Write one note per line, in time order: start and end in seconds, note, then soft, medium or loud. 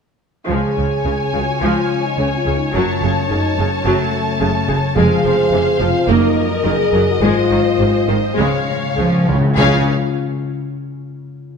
0.48 0.57 C#2 soft
0.48 2.76 C#3 soft
0.48 0.75 F3 soft
0.48 1.30 G#4 medium
0.48 4.94 C#5 soft
0.48 2.70 G#5 soft
0.78 0.86 C#2 soft
0.78 0.86 C#3 soft
0.78 1.90 C#4 soft
1.05 1.13 C#2 soft
1.05 1.14 C#3 soft
1.05 2.18 G#4 soft
1.34 1.42 C#2 soft
1.34 1.43 C#2 soft
1.34 1.42 C#3 soft
1.34 2.46 F4 soft
1.34 1.62 F#4 medium
1.62 1.70 C#2 medium
1.62 1.70 C#2 soft
1.62 1.88 F3 medium
1.62 2.77 G#3 soft
1.62 2.04 F4 medium
1.91 3.57 C#4 soft
2.04 2.18 D#4 medium
2.18 2.26 C#2 soft
2.18 2.27 C#3 soft
2.18 2.37 C#4 medium
2.18 2.77 G#4 soft
2.37 2.45 F4 medium
2.46 2.54 C#2 soft
2.46 2.55 C#2 soft
2.46 2.54 C#3 soft
2.46 2.77 F4 soft
2.56 2.74 D#4 medium
2.73 2.83 F#1 medium
2.73 5.00 F#2 soft
2.73 2.83 F#2 medium
2.73 3.00 F#3 medium
2.73 3.29 C#4 medium
2.73 4.94 A5 medium
3.02 3.10 F#1 soft
3.02 3.11 F#2 soft
3.02 3.11 C#3 soft
3.02 4.12 A3 soft
3.29 3.38 F#1 soft
3.29 3.40 F#2 soft
3.29 3.38 C#3 soft
3.29 3.58 D#4 medium
3.29 4.40 F#4 soft
3.58 3.66 F#1 soft
3.58 3.67 F#2 soft
3.58 3.67 C#3 soft
3.58 3.85 C#4 medium
3.58 4.68 C#4 soft
3.85 3.93 F#1 medium
3.85 3.94 F#2 medium
3.85 5.00 C#3 medium
3.85 4.12 F#3 medium
3.85 4.68 A3 medium
4.14 5.00 A3 soft
4.40 4.49 F#1 soft
4.40 4.49 F#2 medium
4.40 4.48 C#3 medium
4.40 4.99 F#4 soft
4.68 4.77 F#1 medium
4.68 4.77 F#2 soft
4.68 4.76 C#3 medium
4.68 4.99 C#4 soft
4.96 5.04 F1 medium
4.96 5.04 F2 medium
4.96 6.12 F2 medium
4.96 5.23 G#3 medium
4.96 5.77 G#4 medium
4.96 6.07 C5 medium
4.96 6.08 F5 medium
5.24 5.32 F1 soft
5.24 5.33 F2 soft
5.24 5.33 F3 soft
5.24 6.12 C4 soft
5.51 5.59 F1 medium
5.51 5.61 F2 medium
5.51 5.61 C3 medium
5.51 6.12 G#4 medium
5.80 5.88 F1 soft
5.80 5.90 F2 soft
5.80 5.88 F3 medium
5.80 6.08 F4 medium
5.80 6.12 F4 soft
6.08 6.16 F#1 medium
6.08 6.17 F#2 medium
6.08 7.25 F#2 medium
6.08 6.35 A#3 medium
6.08 6.52 D#4 medium
6.08 7.22 A#4 medium
6.08 8.38 D#5 medium
6.38 7.25 A#3 soft
6.53 6.66 A#4 medium
6.65 6.73 F#1 medium
6.65 6.73 F#2 medium
6.65 6.73 D#3 medium
6.65 7.08 G#4 medium
6.65 7.25 A#4 soft
6.93 7.01 F#1 medium
6.93 7.01 F#2 soft
6.93 7.02 F#3 medium
6.93 8.07 D#4 medium
7.11 7.24 F#4 medium
7.21 7.29 G#1 medium
7.21 8.41 G#2 medium
7.21 7.30 G#2 medium
7.21 7.48 G#3 medium
7.21 8.07 F4 medium
7.21 8.37 C5 medium
7.50 7.58 G#1 medium
7.50 7.58 G#2 soft
7.50 7.59 D#3 soft
7.50 8.41 C4 soft
7.78 7.86 G#1 soft
7.78 7.88 G#2 soft
7.78 7.88 C3 soft
7.78 8.97 G#4 soft
8.07 8.15 G#1 soft
8.07 8.18 G#2 soft
8.07 8.17 D#3 soft
8.07 8.22 D#4 medium
8.07 8.41 D#4 soft
8.37 8.45 C#2 medium
8.37 9.53 C#3 medium
8.37 8.47 C#3 medium
8.37 8.66 G#3 medium
8.37 9.26 C#4 medium
8.37 9.37 C#5 soft
8.37 9.36 F5 soft
8.54 8.60 C#3 soft
8.61 8.69 C#3 soft
8.68 8.77 C#3 soft
8.68 9.55 C#4 soft
8.78 8.84 C#3 soft
8.86 8.93 C#3 soft
8.94 9.05 C#2 soft
8.94 9.01 C#3 medium
8.94 9.05 C#3 medium
8.98 9.08 C#3 medium
8.98 9.26 F3 medium
8.98 9.57 G#4 soft
9.09 9.17 C#3 medium
9.18 9.24 C#3 medium
9.25 9.36 C#2 soft
9.25 9.32 C#3 medium
9.25 9.57 C#3 medium
9.25 9.35 F3 soft
9.25 9.57 F4 soft
9.33 9.40 C#3 medium
9.41 9.49 C#3 medium
9.53 9.91 C#2 medium
9.53 9.91 C#3 medium
9.53 9.85 C#3 medium
9.53 9.91 C#4 medium
9.58 9.91 C#3 medium
9.58 9.83 C#4 medium
9.58 9.91 F4 medium
9.58 9.91 G#4 medium
9.58 9.92 C#5 medium
9.58 9.91 F5 medium
9.63 9.91 F5 medium